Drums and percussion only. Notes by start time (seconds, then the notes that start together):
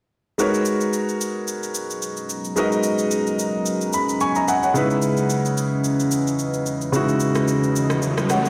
0.39 shaker
0.54 shaker
0.65 shaker
0.81 shaker
0.93 shaker
1.09 shaker
1.21 shaker
1.48 shaker
1.63 shaker
1.75 shaker
1.90 shaker
2.02 shaker
2.17 shaker
2.29 shaker
2.45 shaker
2.57 shaker
2.72 shaker
2.83 shaker
2.98 shaker
3.11 shaker
3.27 shaker
3.39 shaker
3.66 shaker
3.81 shaker
3.93 shaker
4.09 shaker
4.20 shaker
4.35 shaker
4.48 shaker
4.63 shaker
4.75 shaker
4.90 shaker
5.02 shaker
5.17 shaker
5.30 shaker
5.45 shaker
5.57 shaker
5.84 shaker
6.00 shaker
6.11 shaker
6.27 shaker
6.39 shaker
6.54 shaker
6.66 shaker
6.81 shaker
6.93 shaker
7.09 shaker
7.20 shaker
7.35 cross-stick, shaker
7.48 shaker
7.64 shaker
7.76 shaker
7.90 cross-stick, shaker
8.02 shaker
8.18 cross-stick, shaker
8.30 cross-stick, shaker
8.45 shaker